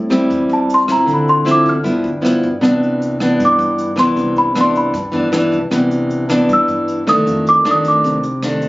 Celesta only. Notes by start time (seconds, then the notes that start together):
0.53 A5
0.74 C6
0.92 A#5
1.14 B5
1.29 C6
1.51 D6
1.69 F6
3.45 D6
3.99 C6
4.38 B5
4.61 C6
4.77 B5
6.53 E6
7.09 D#6
7.49 D6
7.71 D#6
7.88 D6